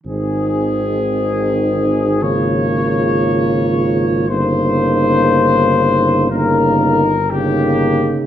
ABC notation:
X:1
M:4/4
L:1/16
Q:1/4=59
K:Ab
V:1 name="Trumpet section"
A8 d8 | c8 B4 G4 |]
V:2 name="French horn section"
E8 F8 | E8 E4 E4 |]
V:3 name="Euphonium"
C8 B,8 | B,8 B,3 z B,4 |]
V:4 name="Trombone" clef=bass
E,8 D,8 | D,8 D,3 z D,4 |]
V:5 name="Tuba" clef=bass
A,,,16 | G,,,16 |]